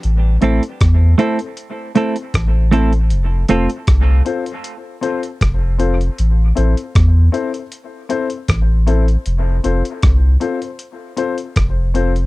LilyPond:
<<
  \new Staff \with { instrumentName = "Grand piano" } { \time 4/4 \key a \minor \tempo 4 = 78 r8 <c' e' a' c''>16 r8. <c' e' a' c''>16 <a' c''>16 r8 <c' e' a' c''>16 r8. <c' e' a' c''>16 r16 | r8 <c' f' a' c''>16 r8. <c' f' a' c''>16 <a' c''>16 r8 <c' f' a' c''>16 r8. <c' f' a' c''>16 r16 | r8 <c' e' a' c''>16 r8. <c' e' a' c''>16 <a' c''>16 r8 <c' e' a' c''>16 r8. <c' e' a' c''>16 r16 | r8 <c' f' a' c''>16 r8. <c' f' a' c''>16 <a' c''>16 r8 <c' f' a' c''>16 r8. <c' f' a' c''>16 r16 | }
  \new Staff \with { instrumentName = "Clean electric guitar" } { \time 4/4 \key a \minor r8 <a c' e' a'>16 r8. <a c' e' a'>16 r8. <a c' e' a'>16 r8. <a c' e' a'>16 r16 | r8 <a c' f' a'>16 r2. r16 | r1 | r1 | }
  \new Staff \with { instrumentName = "Sub bass" } { \clef bass \time 4/4 \key a \minor a,,8 a,,16 r16 e,8 r4. a,,4 | f,,8 f,,16 r16 c,8 r4. f,,4 | a,,8 a,,16 r16 e,8 r4. a,,4 | f,,8 f,,16 r16 c,8 r4. f,,4 | }
  \new DrumStaff \with { instrumentName = "Drums" } \drummode { \time 4/4 hh8 hh16 hh16 <hh bd ss>8 hh16 hh16 hh8 hh16 hh16 <hh bd ss>8 hh16 hh16 | hh8 hh16 hh16 <hh bd ss>8 hh16 hh16 hh8 hh16 hh16 <hh bd ss>8 hh16 hh16 | hh8 hh16 hh16 <hh bd ss>8 hh16 hh16 hh8 hh16 hh16 <hh bd ss>8 hh16 hh16 | hh8 hh16 hh16 <hh bd ss>8 hh16 hh16 hh8 hh16 hh16 <hh bd ss>8 hh16 hh16 | }
>>